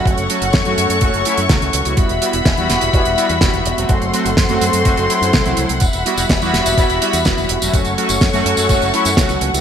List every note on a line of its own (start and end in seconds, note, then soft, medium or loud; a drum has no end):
0.00 0.27 F#3 medium
0.00 0.27 A3 medium
0.00 0.27 C#4 medium
0.00 0.27 F#4 medium
0.00 1.94 F#5 medium
0.06 0.14 F#1 loud
0.06 1.96 A4 medium
0.06 1.96 C#5 medium
0.06 1.96 C#6 medium
0.06 kick loud
0.06 closed hi-hat medium
0.18 0.26 F#1 medium
0.18 closed hi-hat soft
0.30 0.46 F#3 medium
0.30 0.46 A3 medium
0.30 0.46 C#4 medium
0.30 0.46 F#4 loud
0.30 closed hi-hat loud
0.42 0.50 F#1 medium
0.42 closed hi-hat medium
0.53 0.62 F#2 loud
0.53 kick loud
0.53 snare loud
0.53 closed hi-hat medium
0.65 0.75 F#2 medium
0.65 0.99 F#3 medium
0.65 0.99 A3 medium
0.65 0.99 C#4 medium
0.65 0.99 F#4 loud
0.65 closed hi-hat soft
0.78 0.87 F#2 loud
0.78 closed hi-hat loud
0.90 0.98 F#2 medium
0.90 closed hi-hat medium
1.01 1.10 F#1 loud
1.01 1.23 F#3 medium
1.01 1.23 A3 medium
1.01 1.23 C#4 medium
1.01 1.23 F#4 loud
1.01 kick loud
1.01 closed hi-hat medium
1.14 1.22 F#1 medium
1.14 closed hi-hat soft
1.25 1.42 F#3 loud
1.25 1.42 A3 medium
1.25 1.42 C#4 medium
1.25 1.42 E4 loud
1.25 closed hi-hat loud
1.37 1.47 F#2 medium
1.37 closed hi-hat medium
1.49 1.58 C#2 loud
1.49 1.83 F#3 medium
1.49 1.83 A3 medium
1.49 1.83 C#4 medium
1.49 1.83 F#4 medium
1.49 kick loud
1.49 snare loud
1.49 closed hi-hat medium
1.62 1.71 C#2 medium
1.62 closed hi-hat soft
1.73 1.82 C#2 loud
1.73 closed hi-hat loud
1.85 1.94 C#2 medium
1.85 2.19 G3 medium
1.85 2.19 B3 medium
1.85 2.19 E4 medium
1.85 2.19 F#4 medium
1.85 closed hi-hat medium
1.97 2.06 E1 loud
1.97 3.88 G3 medium
1.97 3.88 E5 medium
1.97 3.88 F#5 medium
1.97 3.88 B5 medium
1.97 kick loud
1.97 closed hi-hat medium
2.09 2.18 E1 medium
2.09 closed hi-hat soft
2.21 2.38 G3 medium
2.21 2.38 B3 medium
2.21 2.38 E4 medium
2.21 2.38 F#4 loud
2.21 closed hi-hat loud
2.33 2.42 E1 medium
2.33 closed hi-hat medium
2.45 2.54 E1 loud
2.45 kick loud
2.45 snare loud
2.45 closed hi-hat medium
2.57 2.67 E2 medium
2.57 2.91 G3 medium
2.57 2.91 B3 medium
2.57 2.91 E4 medium
2.57 2.91 F#4 loud
2.57 closed hi-hat soft
2.70 2.79 E1 loud
2.70 snare medium
2.70 closed hi-hat medium
2.81 2.91 E1 medium
2.81 closed hi-hat medium
2.93 3.02 E1 loud
2.93 3.15 G3 medium
2.93 3.15 B3 medium
2.93 3.15 E4 medium
2.93 3.15 F#4 loud
2.93 kick loud
2.93 closed hi-hat medium
3.05 3.15 E1 medium
3.05 closed hi-hat soft
3.17 3.34 G3 loud
3.17 3.34 B3 medium
3.17 3.34 E4 medium
3.17 3.34 F#4 loud
3.17 closed hi-hat medium
3.29 3.38 E2 medium
3.29 closed hi-hat medium
3.41 3.50 E1 loud
3.41 3.75 G3 medium
3.41 3.75 B3 medium
3.41 3.75 E4 medium
3.41 3.75 F#4 medium
3.41 kick loud
3.41 snare loud
3.41 closed hi-hat medium
3.54 3.62 E1 medium
3.54 closed hi-hat soft
3.66 3.74 E1 medium
3.66 closed hi-hat medium
3.77 3.86 E1 medium
3.77 4.11 F#3 medium
3.77 4.11 A3 medium
3.77 4.11 C4 medium
3.77 4.11 F#4 medium
3.77 closed hi-hat medium
3.89 3.98 F#1 medium
3.89 5.79 A4 medium
3.89 5.79 C5 medium
3.89 7.69 F#5 medium
3.89 5.79 C6 medium
3.89 kick loud
3.89 closed hi-hat medium
4.02 4.10 F#1 medium
4.02 closed hi-hat soft
4.13 4.30 F#3 medium
4.13 4.30 A3 medium
4.13 4.30 C4 medium
4.13 4.30 F#4 loud
4.13 closed hi-hat medium
4.25 4.34 F#1 medium
4.25 closed hi-hat medium
4.37 4.46 F#2 loud
4.37 kick loud
4.37 snare loud
4.37 closed hi-hat medium
4.49 4.58 F#2 medium
4.49 4.83 F#3 medium
4.49 4.83 A3 medium
4.49 4.83 C4 medium
4.49 4.83 F#4 loud
4.49 closed hi-hat soft
4.61 4.70 F#2 medium
4.61 closed hi-hat medium
4.73 4.82 F#2 medium
4.73 closed hi-hat medium
4.85 4.94 F#1 loud
4.85 5.07 F#3 medium
4.85 5.07 A3 medium
4.85 5.07 C4 medium
4.85 5.07 F#4 loud
4.85 kick loud
4.85 closed hi-hat medium
4.97 5.06 F#1 medium
4.97 closed hi-hat soft
5.09 5.43 F#3 medium
5.09 5.43 A3 medium
5.09 5.43 C4 medium
5.09 5.43 E4 medium
5.09 closed hi-hat loud
5.22 5.30 F#2 medium
5.22 closed hi-hat medium
5.33 5.42 C2 loud
5.33 kick loud
5.33 snare loud
5.33 closed hi-hat medium
5.45 5.54 C2 medium
5.45 5.72 F#3 medium
5.45 5.72 A3 medium
5.45 5.72 C4 medium
5.45 5.72 E4 loud
5.45 closed hi-hat soft
5.57 5.66 C2 medium
5.57 closed hi-hat loud
5.69 5.78 C2 medium
5.69 closed hi-hat medium
5.80 5.90 E1 medium
5.80 7.72 G3 medium
5.80 7.71 E5 medium
5.80 7.71 B5 medium
5.80 kick loud
5.80 closed hi-hat medium
5.80 tambourine soft
5.93 6.02 E1 medium
5.93 closed hi-hat soft
5.93 tambourine soft
6.05 6.22 G3 medium
6.05 6.22 B3 medium
6.05 6.22 E4 medium
6.05 6.22 F#4 medium
6.05 closed hi-hat loud
6.17 6.26 E1 medium
6.17 closed hi-hat medium
6.17 tambourine medium
6.29 6.38 E1 loud
6.29 kick loud
6.29 snare loud
6.29 closed hi-hat medium
6.29 tambourine soft
6.41 6.50 E2 medium
6.41 6.75 G3 medium
6.41 6.75 B3 medium
6.41 6.75 E4 medium
6.41 6.75 F#4 loud
6.41 closed hi-hat soft
6.41 tambourine soft
6.54 6.62 E1 medium
6.54 snare medium
6.54 closed hi-hat loud
6.65 6.74 E1 medium
6.65 closed hi-hat medium
6.65 tambourine medium
6.78 6.86 E1 loud
6.78 6.99 G3 medium
6.78 6.99 B3 medium
6.78 6.99 E4 medium
6.78 6.99 F#4 medium
6.78 kick loud
6.78 closed hi-hat medium
6.78 tambourine medium
6.89 6.98 E1 medium
6.89 closed hi-hat soft
6.89 tambourine soft
7.01 7.18 G3 loud
7.01 7.18 B3 medium
7.01 7.18 E4 medium
7.01 7.18 F#4 loud
7.01 closed hi-hat medium
7.13 7.22 E2 medium
7.13 closed hi-hat medium
7.13 tambourine medium
7.25 7.34 E1 loud
7.25 7.59 G3 medium
7.25 7.59 B3 medium
7.25 7.59 E4 medium
7.25 7.59 F#4 medium
7.25 kick loud
7.25 snare loud
7.25 closed hi-hat medium
7.25 tambourine soft
7.38 7.46 E1 medium
7.38 closed hi-hat soft
7.38 tambourine soft
7.49 7.58 E1 medium
7.49 closed hi-hat loud
7.62 7.70 E1 medium
7.62 7.95 F#3 medium
7.62 7.95 A3 medium
7.62 7.95 C#4 medium
7.62 7.95 F#4 medium
7.62 closed hi-hat medium
7.62 tambourine medium
7.73 7.82 F#1 loud
7.73 9.61 A4 medium
7.73 9.61 C#5 medium
7.73 9.61 F#5 medium
7.73 9.61 C#6 medium
7.73 kick loud
7.73 closed hi-hat medium
7.73 tambourine medium
7.85 7.94 F#1 medium
7.85 closed hi-hat soft
7.85 tambourine soft
7.98 8.14 F#3 medium
7.98 8.14 A3 medium
7.98 8.14 C#4 medium
7.98 8.14 F#4 loud
7.98 closed hi-hat medium
8.09 8.18 F#1 medium
8.09 closed hi-hat medium
8.09 tambourine medium
8.21 8.30 F#2 loud
8.21 kick loud
8.21 snare loud
8.21 closed hi-hat medium
8.33 8.42 F#2 medium
8.33 8.67 F#3 medium
8.33 8.67 A3 medium
8.33 8.67 C#4 medium
8.33 8.67 F#4 loud
8.33 closed hi-hat soft
8.33 tambourine soft
8.46 8.54 F#2 medium
8.46 closed hi-hat loud
8.57 8.66 F#2 medium
8.57 closed hi-hat medium
8.57 tambourine medium
8.69 8.78 F#1 loud
8.69 8.91 F#3 medium
8.69 8.91 A3 medium
8.69 8.91 C#4 medium
8.69 8.91 F#4 loud
8.69 kick loud
8.69 closed hi-hat medium
8.69 tambourine medium
8.82 8.90 F#1 medium
8.82 closed hi-hat soft
8.82 tambourine soft
8.93 9.10 F#3 loud
8.93 9.10 A3 medium
8.93 9.10 C#4 medium
8.93 9.10 E4 loud
8.93 closed hi-hat medium
9.05 9.14 F#2 medium
9.05 closed hi-hat medium
9.05 tambourine medium
9.17 9.26 C#2 loud
9.17 9.51 F#3 medium
9.17 9.51 A3 medium
9.17 9.51 C#4 medium
9.17 9.51 F#4 medium
9.17 kick loud
9.17 snare loud
9.17 closed hi-hat medium
9.17 tambourine soft
9.29 9.38 C#2 medium
9.29 closed hi-hat soft
9.29 tambourine soft
9.41 9.50 C#2 medium
9.41 closed hi-hat medium
9.54 9.61 C#2 medium
9.54 9.61 G3 medium
9.54 9.61 B3 medium
9.54 9.61 E4 medium
9.54 9.61 F#4 medium
9.54 closed hi-hat medium
9.54 tambourine medium